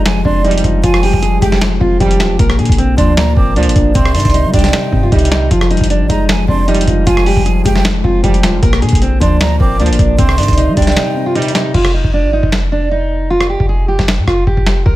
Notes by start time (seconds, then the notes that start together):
Already playing: F1 F3 G3 G#3
0.06 F3 G#5, finger snap, snare, closed hi-hat
0.25 F1 C4 D4 C6, kick
0.44 C2 G#2 F3 G3 D#4, closed hi-hat
0.51 closed hi-hat
0.58 closed hi-hat
0.64 F1 F4, kick, closed hi-hat
0.83 F1 F3 F4 G#5, kick, closed hi-hat
0.94 cross-stick
1.03 G3 G4, open hi-hat
1.13 F1, kick
1.22 F3 G#4, closed hi-hat
1.41 F1 G#3 G4 G5, kick, closed hi-hat
1.52 snare
1.61 F3, finger snap, snare, closed hi-hat
1.80 F1 C4 F4, kick
2.00 F1 C2 G#2 F3 G3 G4, kick, closed hi-hat
2.11 closed hi-hat
2.20 D#1 F4, finger snap, snare, closed hi-hat
2.30 F1
2.39 A#1 A#2 A#4, kick, closed hi-hat
2.50 cross-stick
2.59 A#2 D3 G#4, closed hi-hat
2.65 A#1, kick, closed hi-hat
2.72 closed hi-hat
2.78 A#2 C4, closed hi-hat
2.97 D2 F3 D4 C6, kick, closed hi-hat
3.17 A#2 A#5, finger snap, snare, closed hi-hat
3.36 G#1 A#3 C4 D6, kick
3.56 D2 A#2 F3 D4, closed hi-hat
3.63 G#1, closed hi-hat
3.69 closed hi-hat
3.76 A#1 D4, kick, closed hi-hat
3.95 C2 C3 C4 C6, kick, closed hi-hat
4.05 cross-stick
4.15 G2 D#3 D4, closed hi-hat, open hi-hat
4.20 closed hi-hat
4.25 C2, kick, closed hi-hat
4.30 closed hi-hat
4.34 C3 D#4, closed hi-hat
4.44 G3
4.53 C2 G3 D4 G5, kick, closed hi-hat
4.59 closed hi-hat
4.64 snare, closed hi-hat
4.69 closed hi-hat
4.73 C3 D#4, finger snap, snare, closed hi-hat
4.93 G2 C4, kick
5.03 F4
5.12 C2 D#2 C3 G3 D#4, kick, closed hi-hat
5.19 closed hi-hat
5.25 closed hi-hat
5.32 D#4, finger snap, snare, closed hi-hat
5.50 F1 F3 F4, kick, closed hi-hat
5.61 cross-stick
5.71 G3 D#4, closed hi-hat
5.77 F1, kick, closed hi-hat
5.84 closed hi-hat
5.90 F3 D4, closed hi-hat
6.00 G#1
6.09 F1 G#3 D#4 A#5, kick, closed hi-hat
6.29 F3 G#5, finger snap, snare, closed hi-hat
6.48 F1 C4 D4 C6, kick
6.68 C2 G#2 F3 G3 D#4, closed hi-hat
6.74 closed hi-hat
6.81 closed hi-hat
6.87 F1 F4, kick, closed hi-hat
7.06 F1 F3 F4 G#5, kick, closed hi-hat
7.17 cross-stick
7.26 G3 G4, open hi-hat
7.37 F1, kick
7.46 F3 G#4, closed hi-hat
7.65 F1 G#3 G4 G5, kick, closed hi-hat
7.76 snare
7.85 F3, finger snap, snare, closed hi-hat
8.03 F1 C4 F4, kick
8.23 F1 C2 G#2 F3 G3 G4, kick, closed hi-hat
8.34 closed hi-hat
8.43 D#1 F4, finger snap, snare, closed hi-hat
8.53 F1
8.63 A#1 A#2 A#4, kick, closed hi-hat
8.73 cross-stick
8.82 A#2 D3 G#4, closed hi-hat
8.89 A#1, kick, closed hi-hat
8.95 closed hi-hat
9.02 A#2 C4, closed hi-hat
9.20 D2 F3 D4 C6, kick, closed hi-hat
9.40 A#2 A#5, finger snap, snare, closed hi-hat
9.60 G#1 A#3 C4 D6, kick
9.80 D2 A#2 F3 D4, closed hi-hat
9.86 G#1, closed hi-hat
9.93 closed hi-hat
9.99 A#1 D4, kick, closed hi-hat
10.18 C2 C3 C4 C6, kick, closed hi-hat
10.29 cross-stick
10.38 G2 D#3 D4, closed hi-hat, open hi-hat
10.43 closed hi-hat
10.48 C2, kick, closed hi-hat
10.53 closed hi-hat
10.57 C3 D#4, closed hi-hat
10.68 G3
10.77 C2 G3 D4 G5, kick, closed hi-hat
10.82 closed hi-hat
10.87 snare, closed hi-hat
10.92 closed hi-hat
10.96 C3 D#4, finger snap, snare, closed hi-hat
11.16 C4
11.26 F4
11.35 D#2 C3 G3 D#4, closed hi-hat
11.42 closed hi-hat
11.48 closed hi-hat
11.55 D#4, finger snap, snare, closed hi-hat
11.74 F1 F4, kick, crash
11.85 cross-stick
11.94 D#4
12.04 F1, kick
12.14 D4
12.24 G#1
12.33 D#4
12.43 F1, kick
12.52 finger snap, snare
12.72 D4
12.91 D#4
13.30 F4
13.40 cross-stick
13.50 G4
13.60 F1, kick
13.69 G#4
13.88 G4
13.99 F1, kick, snare
14.08 finger snap, snare
14.18 G#2
14.27 F1 F4, kick, cross-stick
14.47 F1 G4, kick
14.57 F1, kick
14.66 finger snap, snare
14.86 A#1 A#4, kick